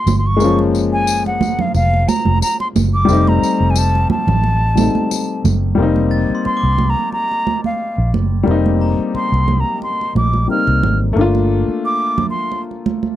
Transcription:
Already playing: A3 A#3 D4 F4 C6
0.06 G1, tambourine, high conga, low conga
0.19 C6
0.27 C#6
0.37 F#1 G#3 A#3, tambourine
0.41 F3 C#4, muted conga
0.59 muted conga
0.75 tambourine
0.93 G#5
1.07 tambourine
1.26 F#5, muted conga
1.41 tambourine, high conga, low conga
1.59 F5, low conga
1.74 F1 F5, tambourine, muted conga
1.94 muted conga
2.08 A#5, tambourine, high conga
2.25 F1, high conga
2.42 A#5, tambourine, muted conga
2.60 C6, muted conga
2.75 F#1, tambourine, high conga, low conga
2.94 D6
3.05 F1 G3 A3, tambourine
3.10 C4 D#4
3.27 A#5, muted conga, high conga
3.43 tambourine
3.60 F1
3.70 G#5
3.76 A5, tambourine, muted conga
3.95 muted conga
4.10 A5, muted fingered electric bass stroke, high conga, low conga
4.27 A1, low conga
4.44 muted conga
4.75 G3 A3 C4, tambourine, high conga
4.79 D#4
4.95 high conga
5.11 tambourine, muted conga
5.44 F#1, tambourine, high conga, low conga
5.75 F1 G3 A#3
5.80 C4 D#4
5.96 muted conga, high conga
6.11 A6
6.30 muted fingered electric bass stroke
6.35 C6
6.45 C6, muted fingered electric bass stroke, muted conga
6.57 D6
6.63 C2
6.78 high conga, low conga
6.90 A#5
7.12 A#5, muted conga
7.31 muted conga
7.47 high conga
7.64 F5, high conga
7.98 A#1
8.13 F#1, high conga, low conga
8.43 F1 G3 A#3
8.48 C4 D#4, muted conga
8.66 muted conga, high conga
8.81 A#5
8.99 muted fingered electric bass stroke
9.14 C6, muted fingered electric bass stroke, muted conga
9.32 C2, muted conga
9.48 high conga, low conga
9.60 A#5
9.82 C6, muted conga
10.01 muted conga
10.15 A#1 D6, high conga
10.34 high conga
10.48 G3 A#3 C4 D#4 F6
10.67 C2, muted conga
10.83 G#1, high conga, low conga
11.13 G1 A3 A#3, muted conga
11.18 D4 F4
11.35 muted conga, high conga
11.68 muted fingered electric bass stroke
11.86 D6
12.18 high conga, low conga
12.30 C6
12.52 muted conga
12.71 muted conga
12.86 high conga
13.03 high conga

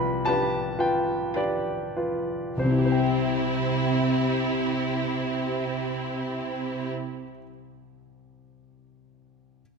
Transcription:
Already playing: C2 F4 B4 D5 G5 B5
0.25 D4 F4 G4 B4 A5
0.79 F4 B4 G5
1.35 D4 F4 G4 B4 D5
1.96 F4 B4
2.57 C2 C3 C4 E4 G4 C5
2.64 C3
2.71 E4
2.78 G4
2.85 C5
2.92 G5

